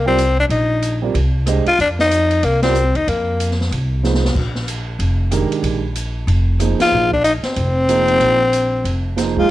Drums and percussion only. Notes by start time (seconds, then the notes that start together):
0.18 cross-stick, hi-hat pedal, ride
0.50 ride
0.82 hi-hat pedal, ride
1.15 ride
1.46 cross-stick, hi-hat pedal, ride
1.66 ride
1.80 ride
1.99 snare
2.11 hi-hat pedal, ride
2.31 ride
2.43 ride
2.62 snare, ride
2.75 hi-hat pedal
2.95 ride
3.08 ride
3.40 hi-hat pedal, ride
3.51 snare
3.61 snare
3.72 ride
4.04 snare, hi-hat pedal
4.14 snare
4.25 snare
4.36 kick, crash
4.55 snare
4.68 hi-hat pedal, ride
5.00 ride
5.31 cross-stick, hi-hat pedal, ride
5.52 ride
5.64 ride
5.95 hi-hat pedal, ride
6.28 ride
6.60 cross-stick, hi-hat pedal, ride
6.80 snare, ride
7.12 kick
7.24 hi-hat pedal, ride
7.43 snare, ride
7.56 ride
7.88 cross-stick, hi-hat pedal, ride
8.08 ride
8.21 ride
8.53 hi-hat pedal, ride
8.85 ride
9.17 cross-stick, snare, hi-hat pedal, ride
9.37 kick